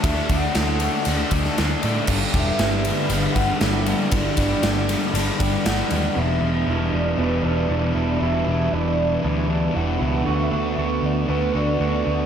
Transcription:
<<
  \new Staff \with { instrumentName = "Soft synth lead" } { \time 4/4 \key e \dorian \tempo 4 = 118 e''8. fis''16 fis''4. r4. | r8 e''4. fis''4 e''4 | d''2. fis''4 | e''4. d''8 b'8 d''4. |
e''4 d''2 fis''4 | e''4. d''8 b'8 d''4. | }
  \new Staff \with { instrumentName = "Clean electric guitar" } { \time 4/4 \key e \dorian <d fis a d' e'>1 | <g, d e g b e'>1~ | <g, d e g b e'>1 | <e, b, e g d' e'>8 <e g d' e'>8 <e g d' e'>4 <e, b, e g d' e'>8 <e g d' e'>8 <e g d' e'>8 <e g d' e'>8 |
<e, b, e g d' e'>8 <e g d' e'>8 <e g d' e'>4 <e, b, e g d' e'>8 <e g d' e'>8 <e g d' e'>8 <e g d' e'>8 | <d a b fis'>8 <a b fis'>8 <d a b fis'>4 <d a b fis'>8 <a b fis'>8 <d a b fis'>8 <a b fis'>8 | }
  \new Staff \with { instrumentName = "Distorted electric guitar" } { \clef bass \time 4/4 \key e \dorian <d a d'>8 <a d'>8 <d a d'>8 <a d'>8 <d a d'>8 <a d'>8 <d a d'>8 <a d'>8 | <g, d g>8 <d g>8 <g, d g>8 <d g>8 <g, d g>8 <d g>8 <g, d g>8 <d g>8 | <g, d g>8 <d g>8 <g, d g>8 <d g>8 <g, d g>8 <d g>8 <g, d g>8 <d g>8 | <e, b, e>8 <b, e>8 <e, b, e>4 <e, b, e>8 <b, e>8 <e, b, e>8 <b, e>8 |
<e, b, e>8 <b, e>8 <e, b, e>4 <e, b, e>8 <b, e>8 <e, b, e>8 <b, e>8 | <d a d'>8 <a d'>8 <d a d'>4 <d a d'>8 <a d'>8 <d a d'>8 <a d'>8 | }
  \new Staff \with { instrumentName = "Overdriven electric guitar" } { \clef bass \time 4/4 \key e \dorian <d a d'>8 <d a d'>8 <d a d'>8 <d a d'>8 <d a d'>8 <d a d'>8 <d a d'>8 <d a d'>8 | <g, d g>8 <g, d g>8 <g, d g>8 <g, d g>8 <g, d g>8 <g, d g>8 <g, d g>8 <g, d g>8 | <g, d g>8 <g, d g>8 <g, d g>8 <g, d g>8 <g, d g>8 <g, d g>8 <g, d g>8 <g, d g>8 | r1 |
r1 | r1 | }
  \new Staff \with { instrumentName = "Picked electric bass" } { \clef bass \time 4/4 \key e \dorian d,8 d,8 d,4 d,8 d,8 d,8 a,8 | g,,8 e,,8 g,,4 g,,8 g,,8 g,,4 | g,,8 g,,8 g,,4 g,,8 g,,8 g,,8 ees,8 | e,,8 e,,8 e,,8 e,,8 e,,8 e,,8 e,,8 e,,8 |
e,,8 e,,8 e,,4 d,4 e,,8 cis,8 | d,8 d,8 d,8 d,8 d,8 d,8 d,8 d,8 | }
  \new DrumStaff \with { instrumentName = "Drums" } \drummode { \time 4/4 <bd cymr>8 <bd cymr>8 <cymr sn>8 cymr8 cymr8 <bd cymr>16 sn16 <cymr sn>8 cymr8 | <cymc bd>8 <bd cymr>8 <cymr sn>8 cymr8 cymr8 <bd cymr>8 <cymr sn>8 cymr8 | <bd cymr>8 <bd cymr>8 <cymr sn>8 <cymr sn>8 cymr8 <bd cymr>8 <cymr sn>8 cymr8 | r4 r4 r4 r4 |
r4 r4 r4 r4 | r4 r4 r4 r4 | }
>>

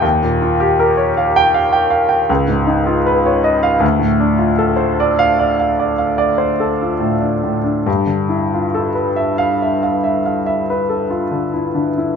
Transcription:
\new Staff \with { instrumentName = "Grand piano" } { \time 5/4 \key g \mixolydian \tempo 4 = 76 << { r4. r16 g''8 r2 r8 f''16 | r4. r16 f''8 r2 r8. | r4. r16 f''8 r2 r8. | } \\ { ees,16 bes,16 f'16 g'16 bes'16 des''16 f''8 f''16 g''16 f''16 g''16 des,16 aes,16 ees'16 f'16 ces''16 des''16 ees''8 | d,16 a,16 d'16 f'16 a'16 c''16 d''8 d''16 f''16 d''16 f''16 d''16 c''16 a'16 f'16 a,16 d'16 a,16 d'16 | g,16 d16 e'16 f'16 a'16 b'16 e''8 e''16 f''16 e''16 f''16 e''16 b'16 a'16 f'16 d16 e'16 d16 e'16 | } >> }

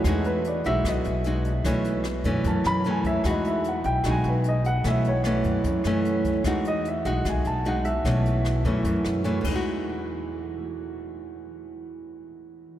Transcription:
<<
  \new Staff \with { instrumentName = "Grand piano" } { \time 4/4 \key e \major \tempo 4 = 150 gis'8 b'8 d''8 e''8 dis''4. r8 | r2 a''8 b''8 gis''8 e''8 | dis''8 e''8 fis''8 g''8 gis''8 b'8 dis''8 fis''8 | e''8 cis''8 r2. |
fis''8 dis''8 e''8 fis''8 gis''8 a''8 fis''8 e''8~ | e''2 r2 | r1 | r1 | }
  \new Staff \with { instrumentName = "Nylon-string guitar" } { \time 4/4 \key e \major << { <gis dis' fis'>4 r8 <gis dis' fis'>4. <gis dis' fis'>8 r8 | <e a cis'>4 r8 <e a cis'>4. <e a cis'>4 | <gis dis' fis'>4. r8 <gis dis' fis'>4. r8 | <e a cis'>8 r8 <e a cis'>4. <e a cis'>4. |
<gis dis' fis'>4 r8 <gis dis' fis'>4. <gis dis' fis'>8 r8 | <e a cis'>4. <e a cis'>4. <e a cis'>8 <e gis dis' fis'>8~ | <e gis dis' fis'>1~ | <e gis dis' fis'>1 | } \\ { e2 b,2 | b,2 fis,2 | e2 b,2 | b,2 fis,2 |
e2 b,2 | b,2 fis,4. r8 | r1 | r1 | } >> }
  \new Staff \with { instrumentName = "Upright bass" } { \clef bass \time 4/4 \key e \major e,4. b,,8 b,,8 b,,4. | b,,4. fis,8 fis,8 fis,4. | e,4. b,,8 b,,8 b,,4. | b,,4. fis,8 fis,8 fis,4. |
e,4. b,,8 b,,8 b,,4. | b,,4. fis,8 fis,8 fis,4 e,8~ | e,1~ | e,1 | }
  \new DrumStaff \with { instrumentName = "Drums" } \drummode { \time 4/4 <hh bd ss>8 hh8 hh8 hh8 <hh bd ss>8 hh8 hh8 hh8 | <hh bd ss>8 hh8 <hh ss>8 <hh bd>8 <hh bd>8 <hh ss>8 hh8 <hh bd>8 | <hh bd ss>8 hh8 hh8 hh8 <hh bd ss>8 hh8 hh8 hh8 | <hh bd ss>8 hh8 <hh ss>8 <hh bd>8 <hh bd>8 <hh ss>8 hh8 <hh bd>8 |
<hh bd ss>8 hh8 hh8 hh8 <hh bd ss>8 hh8 hh8 hh8 | <hh bd ss>8 hh8 <hh ss>8 <hh bd>8 <hh bd>8 <hh ss>8 hh8 <cymc bd>8 | r4 r4 r4 r4 | r4 r4 r4 r4 | }
>>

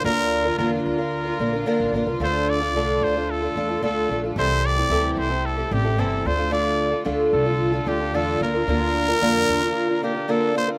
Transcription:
<<
  \new Staff \with { instrumentName = "Trumpet" } { \time 4/4 \key d \minor \tempo 4 = 111 bes'4 bes'8 bes'2 r8 | c''8 d''4 c''8 a'4 a'8. r16 | c''8 d''8.~ d''32 d''32 c''8 a'8 g'8 a'8 c''8 | d''4 r8 a'4 g'8 a'8 bes'8~ |
bes'2~ bes'8 g'8 a'8 c''8 | }
  \new Staff \with { instrumentName = "Twelve-string acoustic guitar" } { \time 4/4 \key d \minor <d bes d' f' bes'>8. <d' f' bes'>16 <d bes d' f' bes'>8. <d' f' bes'>8 <d' f' bes'>16 <bes d' f' bes'>16 <d' f' bes'>16 <d bes d' f' bes'>8 <bes d' f' bes'>16 <d' f' bes'>16 | <d a d' f' a'>8. <d' f' a'>16 <d a d' f' a'>8. <d' f' a'>8 <d' f' a'>16 <a d' f' a'>16 <d' f' a'>16 <d a d' f' a'>8 <a d' f' a'>16 <d' f' a'>16 | <c e g c' e' a'>8. <g c' e' a'>16 <c e g c' e' a'>8. <g c' e' a'>8 <g c' e' a'>16 <g c' e' a'>16 <g c' e' a'>16 <c e g c' e' a'>8 <a d' f' a'>16 <d' f' a'>16 | <d a d' f' a'>8. <d' f' a'>16 <d a d' f' a'>8. <d' f' a'>8 <d' f' a'>16 <a d' f' a'>16 <d' f' a'>16 <d a d' f' a'>8 <bes d' f' bes'>16 <d' f' bes'>16 |
<d bes d' f' bes'>8. <d' f' bes'>16 <d bes d' f' bes'>8. <d' f' bes'>8 <d' f' bes'>16 <bes d' f' bes'>16 <d' f' bes'>16 <d bes d' f' bes'>8 <bes d' f' bes'>16 <d' f' bes'>16 | }
  \new Staff \with { instrumentName = "String section" } { \time 4/4 \key d \minor << { <d f'>1~ | <d f'>1 | <c g'>2.~ <c g'>8 <d f'>8~ | <d f'>1~ |
<d f'>1 | } \\ { bes1 | a1~ | a2.~ a8 a8~ | a2.~ a8 bes8~ |
bes1 | } >> }
  \new Staff \with { instrumentName = "Upright bass" } { \clef bass \time 4/4 \key d \minor d,4 e,8 d,4 bes,,8 r16 a,,16 bes,,16 c,16 | d,4 c,8 d,4 e,8 d,8 bes,,8 | c,4 d,8 c,4 a,,8 g,,8 d,8~ | d,4 d,8 c,4 d,8 e,8 d,8 |
d,4 f,8 e,8 r2 | }
>>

